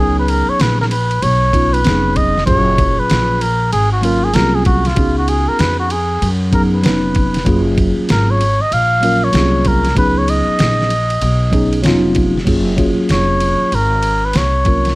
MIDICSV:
0, 0, Header, 1, 6, 480
1, 0, Start_track
1, 0, Key_signature, 6, "major"
1, 0, Tempo, 625000
1, 1897, Time_signature, 4, 2, 24, 8
1, 11482, End_track
2, 0, Start_track
2, 0, Title_t, "Muted trumpet"
2, 0, Program_c, 0, 59
2, 0, Note_on_c, 0, 68, 99
2, 124, Note_off_c, 0, 68, 0
2, 146, Note_on_c, 0, 71, 86
2, 228, Note_on_c, 0, 70, 91
2, 240, Note_off_c, 0, 71, 0
2, 378, Note_on_c, 0, 73, 104
2, 389, Note_off_c, 0, 70, 0
2, 469, Note_on_c, 0, 71, 96
2, 481, Note_off_c, 0, 73, 0
2, 616, Note_off_c, 0, 71, 0
2, 619, Note_on_c, 0, 70, 85
2, 656, Note_off_c, 0, 70, 0
2, 703, Note_on_c, 0, 71, 94
2, 943, Note_on_c, 0, 73, 116
2, 954, Note_off_c, 0, 71, 0
2, 1331, Note_on_c, 0, 71, 101
2, 1343, Note_off_c, 0, 73, 0
2, 1661, Note_on_c, 0, 75, 102
2, 1672, Note_off_c, 0, 71, 0
2, 1883, Note_off_c, 0, 75, 0
2, 1888, Note_on_c, 0, 73, 109
2, 2296, Note_on_c, 0, 71, 99
2, 2307, Note_off_c, 0, 73, 0
2, 2622, Note_on_c, 0, 70, 90
2, 2634, Note_off_c, 0, 71, 0
2, 2854, Note_off_c, 0, 70, 0
2, 2858, Note_on_c, 0, 68, 102
2, 3000, Note_off_c, 0, 68, 0
2, 3012, Note_on_c, 0, 66, 83
2, 3098, Note_on_c, 0, 65, 90
2, 3109, Note_off_c, 0, 66, 0
2, 3255, Note_on_c, 0, 68, 90
2, 3267, Note_off_c, 0, 65, 0
2, 3338, Note_on_c, 0, 70, 100
2, 3349, Note_off_c, 0, 68, 0
2, 3494, Note_on_c, 0, 68, 82
2, 3506, Note_off_c, 0, 70, 0
2, 3573, Note_off_c, 0, 68, 0
2, 3578, Note_on_c, 0, 66, 85
2, 3737, Note_on_c, 0, 65, 85
2, 3748, Note_off_c, 0, 66, 0
2, 3969, Note_off_c, 0, 65, 0
2, 3974, Note_on_c, 0, 66, 81
2, 4061, Note_on_c, 0, 68, 86
2, 4073, Note_off_c, 0, 66, 0
2, 4211, Note_on_c, 0, 70, 97
2, 4222, Note_off_c, 0, 68, 0
2, 4300, Note_on_c, 0, 71, 97
2, 4312, Note_off_c, 0, 70, 0
2, 4445, Note_off_c, 0, 71, 0
2, 4450, Note_on_c, 0, 66, 83
2, 4544, Note_on_c, 0, 68, 85
2, 4555, Note_off_c, 0, 66, 0
2, 4822, Note_off_c, 0, 68, 0
2, 5018, Note_on_c, 0, 70, 94
2, 5087, Note_off_c, 0, 70, 0
2, 5179, Note_on_c, 0, 71, 79
2, 5863, Note_off_c, 0, 71, 0
2, 6228, Note_on_c, 0, 70, 90
2, 6376, Note_on_c, 0, 73, 95
2, 6388, Note_off_c, 0, 70, 0
2, 6614, Note_on_c, 0, 75, 106
2, 6625, Note_off_c, 0, 73, 0
2, 6705, Note_on_c, 0, 77, 123
2, 6717, Note_off_c, 0, 75, 0
2, 7095, Note_on_c, 0, 73, 100
2, 7107, Note_off_c, 0, 77, 0
2, 7427, Note_on_c, 0, 70, 92
2, 7439, Note_off_c, 0, 73, 0
2, 7659, Note_off_c, 0, 70, 0
2, 7663, Note_on_c, 0, 71, 106
2, 7817, Note_on_c, 0, 73, 93
2, 7828, Note_off_c, 0, 71, 0
2, 7906, Note_on_c, 0, 75, 98
2, 7918, Note_off_c, 0, 73, 0
2, 9101, Note_off_c, 0, 75, 0
2, 10070, Note_on_c, 0, 73, 103
2, 10556, Note_on_c, 0, 70, 98
2, 10567, Note_off_c, 0, 73, 0
2, 10943, Note_on_c, 0, 71, 86
2, 10955, Note_off_c, 0, 70, 0
2, 11033, Note_on_c, 0, 73, 98
2, 11045, Note_off_c, 0, 71, 0
2, 11482, Note_off_c, 0, 73, 0
2, 11482, End_track
3, 0, Start_track
3, 0, Title_t, "Tine electric piano"
3, 0, Program_c, 1, 4
3, 0, Note_on_c, 1, 54, 70
3, 0, Note_on_c, 1, 59, 66
3, 0, Note_on_c, 1, 61, 67
3, 0, Note_on_c, 1, 63, 65
3, 0, Note_on_c, 1, 68, 83
3, 0, Note_on_c, 1, 70, 63
3, 119, Note_off_c, 1, 70, 0
3, 704, Note_off_c, 1, 54, 0
3, 709, Note_off_c, 1, 59, 0
3, 713, Note_off_c, 1, 61, 0
3, 716, Note_off_c, 1, 63, 0
3, 719, Note_off_c, 1, 68, 0
3, 1166, Note_on_c, 1, 54, 65
3, 1173, Note_on_c, 1, 59, 64
3, 1180, Note_on_c, 1, 61, 59
3, 1186, Note_on_c, 1, 63, 61
3, 1193, Note_on_c, 1, 65, 73
3, 1370, Note_off_c, 1, 54, 0
3, 1373, Note_off_c, 1, 59, 0
3, 1377, Note_off_c, 1, 61, 0
3, 1379, Note_off_c, 1, 63, 0
3, 1383, Note_off_c, 1, 65, 0
3, 1407, Note_on_c, 1, 54, 65
3, 1413, Note_on_c, 1, 59, 66
3, 1418, Note_on_c, 1, 61, 64
3, 1427, Note_on_c, 1, 63, 63
3, 1432, Note_on_c, 1, 68, 76
3, 1808, Note_off_c, 1, 54, 0
3, 1811, Note_off_c, 1, 59, 0
3, 1814, Note_off_c, 1, 61, 0
3, 1818, Note_off_c, 1, 63, 0
3, 1821, Note_off_c, 1, 68, 0
3, 1887, Note_on_c, 1, 54, 68
3, 1894, Note_on_c, 1, 46, 64
3, 1902, Note_on_c, 1, 61, 65
3, 1908, Note_on_c, 1, 65, 64
3, 1915, Note_on_c, 1, 68, 79
3, 2625, Note_off_c, 1, 54, 0
3, 2628, Note_off_c, 1, 46, 0
3, 2633, Note_off_c, 1, 61, 0
3, 2635, Note_off_c, 1, 65, 0
3, 2639, Note_off_c, 1, 68, 0
3, 3083, Note_on_c, 1, 54, 65
3, 3089, Note_on_c, 1, 58, 61
3, 3097, Note_on_c, 1, 61, 63
3, 3105, Note_on_c, 1, 65, 64
3, 3109, Note_on_c, 1, 70, 74
3, 3288, Note_off_c, 1, 54, 0
3, 3291, Note_off_c, 1, 58, 0
3, 3295, Note_off_c, 1, 61, 0
3, 3299, Note_off_c, 1, 65, 0
3, 3301, Note_off_c, 1, 70, 0
3, 3325, Note_on_c, 1, 54, 68
3, 3334, Note_on_c, 1, 58, 62
3, 3340, Note_on_c, 1, 61, 64
3, 3347, Note_on_c, 1, 65, 66
3, 3352, Note_on_c, 1, 68, 74
3, 3727, Note_off_c, 1, 54, 0
3, 3732, Note_off_c, 1, 58, 0
3, 3735, Note_off_c, 1, 61, 0
3, 3738, Note_off_c, 1, 65, 0
3, 3741, Note_off_c, 1, 68, 0
3, 3804, Note_on_c, 1, 66, 73
3, 3815, Note_on_c, 1, 59, 64
3, 3819, Note_on_c, 1, 61, 67
3, 3828, Note_on_c, 1, 63, 66
3, 3832, Note_on_c, 1, 68, 81
3, 4543, Note_off_c, 1, 66, 0
3, 4549, Note_off_c, 1, 59, 0
3, 4551, Note_off_c, 1, 61, 0
3, 4555, Note_off_c, 1, 63, 0
3, 4557, Note_off_c, 1, 68, 0
3, 5003, Note_on_c, 1, 54, 65
3, 5007, Note_on_c, 1, 59, 67
3, 5017, Note_on_c, 1, 61, 65
3, 5023, Note_on_c, 1, 63, 65
3, 5029, Note_on_c, 1, 68, 75
3, 5208, Note_off_c, 1, 54, 0
3, 5210, Note_off_c, 1, 59, 0
3, 5215, Note_off_c, 1, 61, 0
3, 5218, Note_off_c, 1, 63, 0
3, 5221, Note_off_c, 1, 68, 0
3, 5239, Note_on_c, 1, 54, 75
3, 5246, Note_on_c, 1, 59, 67
3, 5255, Note_on_c, 1, 61, 61
3, 5262, Note_on_c, 1, 63, 70
3, 5267, Note_on_c, 1, 71, 78
3, 5644, Note_off_c, 1, 54, 0
3, 5648, Note_off_c, 1, 59, 0
3, 5652, Note_off_c, 1, 61, 0
3, 5656, Note_off_c, 1, 63, 0
3, 5658, Note_off_c, 1, 71, 0
3, 5720, Note_on_c, 1, 54, 87
3, 5725, Note_on_c, 1, 58, 82
3, 5734, Note_on_c, 1, 61, 78
3, 5739, Note_on_c, 1, 65, 80
3, 5746, Note_on_c, 1, 68, 97
3, 6461, Note_off_c, 1, 54, 0
3, 6464, Note_off_c, 1, 58, 0
3, 6468, Note_off_c, 1, 61, 0
3, 6471, Note_off_c, 1, 65, 0
3, 6475, Note_off_c, 1, 68, 0
3, 6918, Note_on_c, 1, 54, 71
3, 6925, Note_on_c, 1, 58, 67
3, 6931, Note_on_c, 1, 61, 64
3, 6939, Note_on_c, 1, 65, 66
3, 6946, Note_on_c, 1, 70, 77
3, 7126, Note_off_c, 1, 54, 0
3, 7129, Note_off_c, 1, 58, 0
3, 7132, Note_off_c, 1, 61, 0
3, 7136, Note_off_c, 1, 65, 0
3, 7139, Note_off_c, 1, 70, 0
3, 7155, Note_on_c, 1, 54, 74
3, 7164, Note_on_c, 1, 58, 70
3, 7171, Note_on_c, 1, 61, 65
3, 7176, Note_on_c, 1, 65, 67
3, 7182, Note_on_c, 1, 68, 82
3, 7562, Note_off_c, 1, 54, 0
3, 7567, Note_off_c, 1, 58, 0
3, 7570, Note_off_c, 1, 61, 0
3, 7572, Note_off_c, 1, 65, 0
3, 7576, Note_off_c, 1, 68, 0
3, 7641, Note_on_c, 1, 54, 79
3, 7647, Note_on_c, 1, 59, 68
3, 7653, Note_on_c, 1, 61, 65
3, 7660, Note_on_c, 1, 63, 72
3, 7667, Note_on_c, 1, 68, 85
3, 8382, Note_off_c, 1, 54, 0
3, 8385, Note_off_c, 1, 59, 0
3, 8388, Note_off_c, 1, 61, 0
3, 8391, Note_off_c, 1, 63, 0
3, 8395, Note_off_c, 1, 68, 0
3, 8841, Note_on_c, 1, 54, 79
3, 8845, Note_on_c, 1, 59, 72
3, 8854, Note_on_c, 1, 61, 78
3, 8860, Note_on_c, 1, 63, 79
3, 8867, Note_on_c, 1, 68, 95
3, 9047, Note_off_c, 1, 54, 0
3, 9049, Note_off_c, 1, 59, 0
3, 9054, Note_off_c, 1, 61, 0
3, 9056, Note_off_c, 1, 63, 0
3, 9060, Note_off_c, 1, 68, 0
3, 9079, Note_on_c, 1, 54, 88
3, 9087, Note_on_c, 1, 59, 75
3, 9095, Note_on_c, 1, 61, 80
3, 9099, Note_on_c, 1, 63, 81
3, 9109, Note_on_c, 1, 65, 102
3, 9484, Note_off_c, 1, 54, 0
3, 9488, Note_off_c, 1, 59, 0
3, 9492, Note_off_c, 1, 61, 0
3, 9494, Note_off_c, 1, 63, 0
3, 9499, Note_off_c, 1, 65, 0
3, 9560, Note_on_c, 1, 54, 83
3, 9567, Note_on_c, 1, 58, 78
3, 9574, Note_on_c, 1, 61, 70
3, 9582, Note_on_c, 1, 65, 69
3, 9588, Note_on_c, 1, 68, 87
3, 9766, Note_off_c, 1, 54, 0
3, 9770, Note_off_c, 1, 58, 0
3, 9773, Note_off_c, 1, 61, 0
3, 9777, Note_off_c, 1, 65, 0
3, 9781, Note_off_c, 1, 68, 0
3, 9798, Note_on_c, 1, 54, 85
3, 9806, Note_on_c, 1, 58, 74
3, 9812, Note_on_c, 1, 61, 75
3, 9820, Note_on_c, 1, 65, 77
3, 9826, Note_on_c, 1, 68, 87
3, 10540, Note_off_c, 1, 54, 0
3, 10544, Note_off_c, 1, 58, 0
3, 10547, Note_off_c, 1, 61, 0
3, 10551, Note_off_c, 1, 65, 0
3, 10554, Note_off_c, 1, 68, 0
3, 11248, Note_on_c, 1, 54, 58
3, 11254, Note_on_c, 1, 58, 57
3, 11261, Note_on_c, 1, 61, 55
3, 11268, Note_on_c, 1, 65, 54
3, 11274, Note_on_c, 1, 70, 68
3, 11450, Note_off_c, 1, 54, 0
3, 11453, Note_off_c, 1, 58, 0
3, 11457, Note_off_c, 1, 61, 0
3, 11461, Note_off_c, 1, 65, 0
3, 11464, Note_off_c, 1, 70, 0
3, 11482, End_track
4, 0, Start_track
4, 0, Title_t, "Upright bass"
4, 0, Program_c, 2, 32
4, 0, Note_on_c, 2, 37, 97
4, 350, Note_off_c, 2, 37, 0
4, 458, Note_on_c, 2, 34, 92
4, 913, Note_off_c, 2, 34, 0
4, 940, Note_on_c, 2, 35, 98
4, 1394, Note_off_c, 2, 35, 0
4, 1419, Note_on_c, 2, 29, 97
4, 1874, Note_off_c, 2, 29, 0
4, 1900, Note_on_c, 2, 30, 105
4, 2271, Note_off_c, 2, 30, 0
4, 2383, Note_on_c, 2, 34, 95
4, 2836, Note_off_c, 2, 34, 0
4, 2862, Note_on_c, 2, 32, 93
4, 3315, Note_off_c, 2, 32, 0
4, 3339, Note_on_c, 2, 36, 94
4, 3794, Note_off_c, 2, 36, 0
4, 3817, Note_on_c, 2, 37, 98
4, 4190, Note_off_c, 2, 37, 0
4, 4296, Note_on_c, 2, 41, 98
4, 4752, Note_off_c, 2, 41, 0
4, 4778, Note_on_c, 2, 42, 108
4, 5233, Note_off_c, 2, 42, 0
4, 5257, Note_on_c, 2, 29, 89
4, 5713, Note_off_c, 2, 29, 0
4, 5734, Note_on_c, 2, 30, 97
4, 6108, Note_off_c, 2, 30, 0
4, 6213, Note_on_c, 2, 32, 103
4, 6588, Note_off_c, 2, 32, 0
4, 6693, Note_on_c, 2, 34, 88
4, 7151, Note_off_c, 2, 34, 0
4, 7174, Note_on_c, 2, 36, 95
4, 7631, Note_off_c, 2, 36, 0
4, 7654, Note_on_c, 2, 37, 104
4, 8028, Note_off_c, 2, 37, 0
4, 8136, Note_on_c, 2, 34, 98
4, 8592, Note_off_c, 2, 34, 0
4, 8616, Note_on_c, 2, 35, 102
4, 9072, Note_off_c, 2, 35, 0
4, 9096, Note_on_c, 2, 29, 99
4, 9552, Note_off_c, 2, 29, 0
4, 9575, Note_on_c, 2, 30, 94
4, 9949, Note_off_c, 2, 30, 0
4, 10055, Note_on_c, 2, 29, 87
4, 10429, Note_off_c, 2, 29, 0
4, 10534, Note_on_c, 2, 32, 92
4, 10991, Note_off_c, 2, 32, 0
4, 11016, Note_on_c, 2, 36, 83
4, 11473, Note_off_c, 2, 36, 0
4, 11482, End_track
5, 0, Start_track
5, 0, Title_t, "Muted upright bass strokes"
5, 2296, Note_on_c, 9, 29, 47
5, 2373, Note_off_c, 9, 29, 0
5, 4212, Note_on_c, 9, 29, 46
5, 4288, Note_off_c, 9, 29, 0
5, 6129, Note_on_c, 9, 29, 48
5, 6206, Note_off_c, 9, 29, 0
5, 6605, Note_on_c, 9, 29, 47
5, 6682, Note_off_c, 9, 29, 0
5, 8044, Note_on_c, 9, 29, 50
5, 8121, Note_off_c, 9, 29, 0
5, 9969, Note_on_c, 9, 29, 44
5, 10046, Note_off_c, 9, 29, 0
5, 10449, Note_on_c, 9, 29, 42
5, 10525, Note_off_c, 9, 29, 0
5, 11482, End_track
6, 0, Start_track
6, 0, Title_t, "Drums"
6, 217, Note_on_c, 9, 51, 61
6, 294, Note_off_c, 9, 51, 0
6, 458, Note_on_c, 9, 44, 50
6, 458, Note_on_c, 9, 51, 67
6, 469, Note_on_c, 9, 38, 105
6, 535, Note_off_c, 9, 44, 0
6, 535, Note_off_c, 9, 51, 0
6, 546, Note_off_c, 9, 38, 0
6, 625, Note_on_c, 9, 38, 34
6, 699, Note_on_c, 9, 51, 62
6, 701, Note_off_c, 9, 38, 0
6, 776, Note_off_c, 9, 51, 0
6, 851, Note_on_c, 9, 51, 35
6, 928, Note_off_c, 9, 51, 0
6, 940, Note_on_c, 9, 51, 69
6, 1017, Note_off_c, 9, 51, 0
6, 1177, Note_on_c, 9, 36, 90
6, 1181, Note_on_c, 9, 51, 59
6, 1254, Note_off_c, 9, 36, 0
6, 1258, Note_off_c, 9, 51, 0
6, 1337, Note_on_c, 9, 51, 42
6, 1413, Note_off_c, 9, 51, 0
6, 1417, Note_on_c, 9, 44, 47
6, 1417, Note_on_c, 9, 51, 64
6, 1434, Note_on_c, 9, 38, 107
6, 1493, Note_off_c, 9, 44, 0
6, 1493, Note_off_c, 9, 51, 0
6, 1511, Note_off_c, 9, 38, 0
6, 1658, Note_on_c, 9, 51, 53
6, 1663, Note_on_c, 9, 36, 86
6, 1735, Note_off_c, 9, 51, 0
6, 1740, Note_off_c, 9, 36, 0
6, 1824, Note_on_c, 9, 38, 34
6, 1898, Note_on_c, 9, 36, 108
6, 1898, Note_on_c, 9, 51, 75
6, 1901, Note_off_c, 9, 38, 0
6, 1975, Note_off_c, 9, 36, 0
6, 1975, Note_off_c, 9, 51, 0
6, 2138, Note_on_c, 9, 36, 99
6, 2139, Note_on_c, 9, 51, 60
6, 2215, Note_off_c, 9, 36, 0
6, 2216, Note_off_c, 9, 51, 0
6, 2378, Note_on_c, 9, 44, 50
6, 2378, Note_on_c, 9, 51, 69
6, 2389, Note_on_c, 9, 38, 104
6, 2455, Note_off_c, 9, 44, 0
6, 2455, Note_off_c, 9, 51, 0
6, 2465, Note_off_c, 9, 38, 0
6, 2621, Note_on_c, 9, 51, 60
6, 2698, Note_off_c, 9, 51, 0
6, 2861, Note_on_c, 9, 51, 72
6, 2938, Note_off_c, 9, 51, 0
6, 3097, Note_on_c, 9, 51, 67
6, 3174, Note_off_c, 9, 51, 0
6, 3330, Note_on_c, 9, 44, 49
6, 3330, Note_on_c, 9, 51, 71
6, 3348, Note_on_c, 9, 38, 115
6, 3407, Note_off_c, 9, 44, 0
6, 3407, Note_off_c, 9, 51, 0
6, 3424, Note_off_c, 9, 38, 0
6, 3572, Note_on_c, 9, 51, 52
6, 3581, Note_on_c, 9, 36, 83
6, 3649, Note_off_c, 9, 51, 0
6, 3658, Note_off_c, 9, 36, 0
6, 3724, Note_on_c, 9, 51, 41
6, 3743, Note_on_c, 9, 38, 34
6, 3801, Note_off_c, 9, 51, 0
6, 3812, Note_on_c, 9, 51, 75
6, 3816, Note_on_c, 9, 36, 122
6, 3819, Note_off_c, 9, 38, 0
6, 3889, Note_off_c, 9, 51, 0
6, 3893, Note_off_c, 9, 36, 0
6, 4054, Note_on_c, 9, 51, 66
6, 4131, Note_off_c, 9, 51, 0
6, 4294, Note_on_c, 9, 44, 51
6, 4294, Note_on_c, 9, 51, 70
6, 4304, Note_on_c, 9, 38, 108
6, 4370, Note_off_c, 9, 44, 0
6, 4370, Note_off_c, 9, 51, 0
6, 4381, Note_off_c, 9, 38, 0
6, 4533, Note_on_c, 9, 51, 66
6, 4610, Note_off_c, 9, 51, 0
6, 4778, Note_on_c, 9, 51, 73
6, 4855, Note_off_c, 9, 51, 0
6, 5012, Note_on_c, 9, 51, 65
6, 5013, Note_on_c, 9, 36, 88
6, 5089, Note_off_c, 9, 51, 0
6, 5090, Note_off_c, 9, 36, 0
6, 5249, Note_on_c, 9, 44, 51
6, 5249, Note_on_c, 9, 51, 68
6, 5267, Note_on_c, 9, 38, 113
6, 5326, Note_off_c, 9, 44, 0
6, 5326, Note_off_c, 9, 51, 0
6, 5343, Note_off_c, 9, 38, 0
6, 5489, Note_on_c, 9, 51, 51
6, 5498, Note_on_c, 9, 36, 84
6, 5565, Note_off_c, 9, 51, 0
6, 5574, Note_off_c, 9, 36, 0
6, 5639, Note_on_c, 9, 51, 44
6, 5658, Note_on_c, 9, 38, 34
6, 5716, Note_off_c, 9, 51, 0
6, 5731, Note_on_c, 9, 51, 75
6, 5734, Note_on_c, 9, 36, 113
6, 5735, Note_off_c, 9, 38, 0
6, 5808, Note_off_c, 9, 51, 0
6, 5810, Note_off_c, 9, 36, 0
6, 5973, Note_on_c, 9, 36, 101
6, 5973, Note_on_c, 9, 51, 59
6, 6049, Note_off_c, 9, 51, 0
6, 6050, Note_off_c, 9, 36, 0
6, 6211, Note_on_c, 9, 44, 55
6, 6211, Note_on_c, 9, 51, 70
6, 6222, Note_on_c, 9, 38, 110
6, 6288, Note_off_c, 9, 44, 0
6, 6288, Note_off_c, 9, 51, 0
6, 6299, Note_off_c, 9, 38, 0
6, 6456, Note_on_c, 9, 51, 64
6, 6533, Note_off_c, 9, 51, 0
6, 6697, Note_on_c, 9, 51, 72
6, 6774, Note_off_c, 9, 51, 0
6, 6933, Note_on_c, 9, 51, 66
6, 7010, Note_off_c, 9, 51, 0
6, 7164, Note_on_c, 9, 44, 50
6, 7164, Note_on_c, 9, 51, 69
6, 7182, Note_on_c, 9, 38, 115
6, 7241, Note_off_c, 9, 44, 0
6, 7241, Note_off_c, 9, 51, 0
6, 7259, Note_off_c, 9, 38, 0
6, 7409, Note_on_c, 9, 51, 56
6, 7417, Note_on_c, 9, 36, 88
6, 7485, Note_off_c, 9, 51, 0
6, 7493, Note_off_c, 9, 36, 0
6, 7561, Note_on_c, 9, 51, 42
6, 7580, Note_on_c, 9, 38, 35
6, 7638, Note_off_c, 9, 51, 0
6, 7653, Note_on_c, 9, 36, 115
6, 7655, Note_on_c, 9, 51, 70
6, 7657, Note_off_c, 9, 38, 0
6, 7730, Note_off_c, 9, 36, 0
6, 7732, Note_off_c, 9, 51, 0
6, 7895, Note_on_c, 9, 51, 61
6, 7971, Note_off_c, 9, 51, 0
6, 8132, Note_on_c, 9, 44, 51
6, 8132, Note_on_c, 9, 51, 77
6, 8143, Note_on_c, 9, 38, 107
6, 8209, Note_off_c, 9, 44, 0
6, 8209, Note_off_c, 9, 51, 0
6, 8219, Note_off_c, 9, 38, 0
6, 8299, Note_on_c, 9, 38, 34
6, 8374, Note_on_c, 9, 51, 67
6, 8376, Note_off_c, 9, 38, 0
6, 8451, Note_off_c, 9, 51, 0
6, 8526, Note_on_c, 9, 51, 40
6, 8603, Note_off_c, 9, 51, 0
6, 8613, Note_on_c, 9, 51, 70
6, 8690, Note_off_c, 9, 51, 0
6, 8853, Note_on_c, 9, 36, 91
6, 8856, Note_on_c, 9, 51, 67
6, 8930, Note_off_c, 9, 36, 0
6, 8932, Note_off_c, 9, 51, 0
6, 9006, Note_on_c, 9, 51, 43
6, 9083, Note_off_c, 9, 51, 0
6, 9090, Note_on_c, 9, 44, 50
6, 9090, Note_on_c, 9, 51, 68
6, 9107, Note_on_c, 9, 38, 111
6, 9166, Note_off_c, 9, 44, 0
6, 9166, Note_off_c, 9, 51, 0
6, 9184, Note_off_c, 9, 38, 0
6, 9329, Note_on_c, 9, 51, 53
6, 9339, Note_on_c, 9, 36, 86
6, 9406, Note_off_c, 9, 51, 0
6, 9416, Note_off_c, 9, 36, 0
6, 9503, Note_on_c, 9, 38, 36
6, 9575, Note_on_c, 9, 49, 81
6, 9576, Note_on_c, 9, 36, 112
6, 9576, Note_on_c, 9, 51, 70
6, 9580, Note_off_c, 9, 38, 0
6, 9652, Note_off_c, 9, 49, 0
6, 9653, Note_off_c, 9, 36, 0
6, 9653, Note_off_c, 9, 51, 0
6, 9815, Note_on_c, 9, 36, 87
6, 9815, Note_on_c, 9, 51, 58
6, 9892, Note_off_c, 9, 36, 0
6, 9892, Note_off_c, 9, 51, 0
6, 10054, Note_on_c, 9, 44, 49
6, 10054, Note_on_c, 9, 51, 67
6, 10065, Note_on_c, 9, 38, 99
6, 10131, Note_off_c, 9, 44, 0
6, 10131, Note_off_c, 9, 51, 0
6, 10141, Note_off_c, 9, 38, 0
6, 10295, Note_on_c, 9, 51, 55
6, 10371, Note_off_c, 9, 51, 0
6, 10538, Note_on_c, 9, 51, 66
6, 10615, Note_off_c, 9, 51, 0
6, 10771, Note_on_c, 9, 51, 60
6, 10848, Note_off_c, 9, 51, 0
6, 11008, Note_on_c, 9, 44, 44
6, 11008, Note_on_c, 9, 51, 62
6, 11026, Note_on_c, 9, 38, 100
6, 11085, Note_off_c, 9, 44, 0
6, 11085, Note_off_c, 9, 51, 0
6, 11102, Note_off_c, 9, 38, 0
6, 11251, Note_on_c, 9, 51, 50
6, 11260, Note_on_c, 9, 36, 72
6, 11328, Note_off_c, 9, 51, 0
6, 11337, Note_off_c, 9, 36, 0
6, 11405, Note_on_c, 9, 51, 40
6, 11423, Note_on_c, 9, 38, 31
6, 11482, Note_off_c, 9, 38, 0
6, 11482, Note_off_c, 9, 51, 0
6, 11482, End_track
0, 0, End_of_file